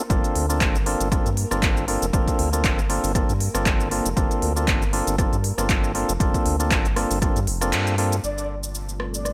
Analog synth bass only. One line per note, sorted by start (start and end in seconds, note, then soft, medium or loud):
0.10 0.21 G1 loud
0.36 0.62 D2 loud
0.61 0.96 G1 medium
1.00 1.20 G1 loud
1.26 1.46 G2 loud
1.51 1.98 G1 medium
2.02 2.11 F1 medium
2.13 2.25 G1 loud
2.39 2.66 D2 loud
2.64 2.99 G1 medium
3.04 3.24 G1 medium
3.29 3.49 G2 loud
3.55 4.01 G1 medium
4.06 4.15 F1 loud
4.17 4.28 G1 loud
4.42 4.69 D2 loud
4.68 5.03 G1 medium
5.07 5.27 G1 loud
5.33 5.52 G2 loud
5.58 6.04 G1 medium
6.09 6.18 F1 medium
6.20 6.32 G1 loud
6.46 6.73 D2 loud
6.71 7.06 G1 medium
7.11 7.30 G1 loud
7.36 7.49 G2 loud
7.47 7.74 F1 medium
7.73 8.20 G2 medium
8.24 9.33 G1 medium